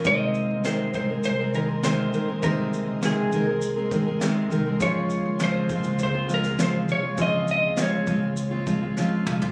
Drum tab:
SH |x-x-x-x-x-x-x-x-|x-x-x-x-x-x-x-x-|x-x-x-xxx-xxx-x-|x-x-x-x-x-x-----|
SD |----o-------o---|----o-------o---|----o------oo---|----o-------o---|
T2 |----------------|----------------|----------------|--------------o-|
FT |----------------|----------------|----------------|---------------o|
BD |o-----o---------|o---------o-----|o-----o---------|o-----o---o-----|